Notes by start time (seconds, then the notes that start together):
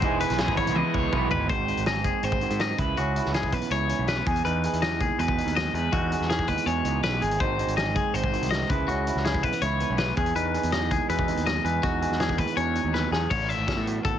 Already playing: C5
0.02 E1 E2 E3 G#3 B3 D#4 E4 G#4, kick, closed hi-hat
0.20 B4, closed hi-hat
0.30 B1, snare, closed hi-hat
0.38 E3 G#3 B3 E4 G#4, snare, closed hi-hat
0.48 G#1, kick
0.57 E3 G#3 B3 E4 B4 C#5, kick, closed hi-hat
0.67 C#2, closed hi-hat
0.76 E3 G#3 B3 E4 D#5, high tom
0.94 C#2 C#5, kick
1.12 B1 B2 E3 G#3 B3 E4 B4, kick
1.30 G#1 G#3 B3 D#4 E4 B4, floor tom
1.49 G#1 G#2 G#3 C4 D#4 F#4 C5, kick, closed hi-hat
1.68 D#4, closed hi-hat
1.77 G#1, closed hi-hat
1.86 G#4 D#5, snare, closed hi-hat
2.04 F#1 G#3 G#4, kick, closed hi-hat
2.23 G#1 C4 C5, closed hi-hat
2.32 kick
2.41 D#3 F#4, closed hi-hat
2.50 G#2, closed hi-hat
2.60 D#4 D#5, snare, closed hi-hat
2.78 C#2 C#3 E4 B4, kick, closed hi-hat
2.97 C#2 C#4 F#4, closed hi-hat
3.16 E4, closed hi-hat
3.25 C#2, snare
3.34 E3 G#4, snare, closed hi-hat
3.43 kick
3.52 B1 B3 B4, kick, closed hi-hat
3.62 closed hi-hat
3.70 C#2 G#2 E4 C#5, closed hi-hat
3.89 C#4, closed hi-hat
3.99 B1
4.07 G#3 B4, snare, closed hi-hat
4.17 B3
4.26 E2 G#4, kick, closed hi-hat
4.36 closed hi-hat
4.45 E2 D#4 B4, closed hi-hat
4.64 G#4, closed hi-hat
4.73 E2, closed hi-hat
4.82 E3 D#5, snare, closed hi-hat
5.01 D#2 G#3 G#4, kick, closed hi-hat
5.19 E2 B2 G#4 B4, closed hi-hat
5.28 kick
5.38 D#4, closed hi-hat
5.46 D#2, closed hi-hat
5.56 G#3 D#5, snare, closed hi-hat
5.73 E2 G#4 B4, closed hi-hat
5.92 E2 D#4 F#4, kick, closed hi-hat
6.12 G#4, closed hi-hat
6.20 E2, snare
6.30 E3 G#4, snare, closed hi-hat
6.39 kick
6.48 D#2 G#3 B4, kick, closed hi-hat
6.58 closed hi-hat
6.66 E2 B2 G#4 C#5, closed hi-hat
6.84 C#2 D#4, closed hi-hat
7.03 B1 G#3 B4, snare, closed hi-hat
7.21 G#1 E2 G#4, closed hi-hat
7.31 closed hi-hat
7.40 G#1 G#2 G#3 C4 D#4 F#4 C5, kick, closed hi-hat
7.59 D#4, closed hi-hat
7.67 G#1, closed hi-hat
7.77 G#4 D#5, snare, closed hi-hat
7.95 F#1 G#3 G#4, kick, closed hi-hat
8.14 G#1 C4 C5, closed hi-hat
8.24 kick
8.32 D#3 F#4, closed hi-hat
8.41 C2, closed hi-hat
8.51 D#4 D#5, snare
8.69 C#2 C#3 E4 B4, kick, closed hi-hat
8.88 C#2 C#4 F#4, closed hi-hat
9.07 E4, closed hi-hat
9.15 C#2, snare
9.25 E3 G#4, snare, closed hi-hat
9.34 kick
9.43 B1 G#3 B4, kick, closed hi-hat
9.52 B3, closed hi-hat
9.61 C#2 G#2 E4 C#5, closed hi-hat
9.80 B3, closed hi-hat
9.90 B1 C#4
9.98 G#3 B4, snare, closed hi-hat
10.08 B3
10.17 E2 G#4, kick, closed hi-hat
10.26 closed hi-hat
10.35 E2 D#4 B4, closed hi-hat
10.54 G#4, closed hi-hat
10.63 E2, closed hi-hat
10.71 E3 D#5, snare, closed hi-hat
10.91 D#2 G#3 G#4, kick, closed hi-hat
11.09 E2 B2 G#4 B4, closed hi-hat
11.19 kick
11.28 D#4, closed hi-hat
11.36 D#2, closed hi-hat
11.46 G#3 D#5, snare, closed hi-hat
11.64 E2 G#4 B4, closed hi-hat
11.83 E2 D#4 F#4, kick, closed hi-hat
12.02 G#4, closed hi-hat
12.10 E2, snare
12.19 E3 G#4, snare, closed hi-hat
12.29 kick
12.38 D#2 G#3 B4, kick, closed hi-hat
12.47 closed hi-hat
12.56 E2 B2 G#4 C#5, closed hi-hat
12.75 D#4, closed hi-hat
12.84 D#2
12.94 B4, snare
13.11 E2 G#4, snare
13.30 A1 A2 C#5, kick, crash
13.49 E5, closed hi-hat
13.58 G#1
13.68 B3, kick, snare, closed hi-hat
13.77 A2
13.87 E3 F#4, closed hi-hat
14.05 G#1 B3 A4, kick, closed hi-hat